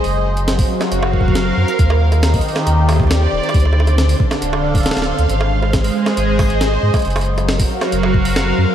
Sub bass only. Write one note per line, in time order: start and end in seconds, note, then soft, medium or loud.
0.04 0.65 F#1 loud
0.92 1.52 F#1 loud
1.57 1.65 F#2 loud
1.79 2.40 D#2 loud
2.67 3.28 D#2 medium
3.33 3.40 D#1 loud
3.54 4.15 D2 loud
4.42 4.92 D1 loud
4.97 5.13 D1 loud
5.19 5.27 D2 loud
5.30 5.90 G#1 loud
6.17 6.78 G#1 medium
6.83 6.91 G#2 loud
7.05 7.66 F#1 loud
7.92 8.53 F#1 loud
8.58 8.66 F#2 loud